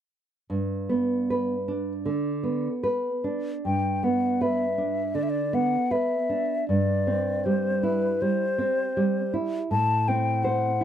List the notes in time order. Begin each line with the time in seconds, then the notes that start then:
0.50 G2
0.89 B3
1.30 B4
1.68 D4
2.06 D3
2.43 B3
2.83 B4
3.24 D4
3.65 G2 G5
4.04 B3 F#5
4.41 B4 E5
4.78 D4
5.15 D3 D5
5.23 E5
5.30 D5
5.53 B3 F#5
5.91 B4 E5
6.29 D4
6.68 G2 D5
7.07 C4
7.45 G3 C5
7.83 E4 B4
8.22 G3 C5
8.58 C4
8.97 G3
9.34 E4
9.71 A2 A5
10.08 C4 G5
10.44 C5 F#5
10.81 E4